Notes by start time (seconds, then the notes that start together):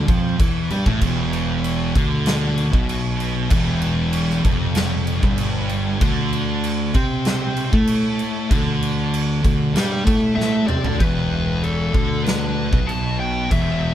0.07 F2 F3, kick, crash
0.38 E2 E3, kick, crash
0.70 G2 G3, crash
0.86 A1 A2, kick
1.01 E1 E2, kick, crash
1.33 crash
1.64 crash
1.94 D2 D3, kick, crash
2.26 snare, crash
2.58 crash
2.72 B1 B2, kick
2.89 crash
3.20 crash
3.50 E1 E2, kick, crash
3.82 crash
4.13 crash
4.30 snare
4.44 F1 F2, kick, crash
4.75 snare, crash
5.07 crash
5.22 G1 G2, kick
5.38 crash
5.69 crash
6.01 D2 D3, kick, crash
6.33 crash
6.64 crash
6.94 C3 C4, kick, crash
7.25 snare, crash
7.57 crash
7.73 A2 A3, kick
7.87 crash
8.19 crash
8.50 D2 D3, kick, crash
8.83 crash
9.14 crash
9.43 D2 D3, kick, crash
9.74 G2 G3, snare, crash
10.05 A2 A3, kick, crash
10.35 A2 A3 E5
10.40 snare
10.67 C3 C4 D5, mid tom
10.83 D2 D3, floor tom
10.98 E1 E2 B4, kick, crash
11.64 A4, crash
11.93 D2 D3, kick
12.24 B4, snare, crash
12.71 B1 B2, kick
12.87 A5, crash
13.20 G5
13.51 E1 E2 E5, kick, crash